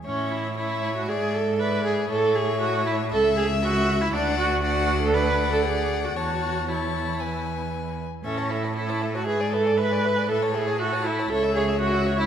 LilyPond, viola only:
\new Staff \with { instrumentName = "Viola" } { \time 4/4 \key a \major \tempo 4 = 118 cis'8 e'8 e'8. fis'16 gis'8 a'8 b'8 gis'8 | a'8 gis'8 fis'8 e'8 a'8 gis'8 fis'8. e'16 | d'8 fis'8 fis'8. a'16 b'8. a'16 gis'8. fis'16 | fis'4 e'2~ e'8 r8 |
cis'8 e'8 e'8. fis'16 gis'8 a'8 b'4 | a'8 gis'8 fis'8 e'8 a'8 gis'8 fis'8. e'16 | }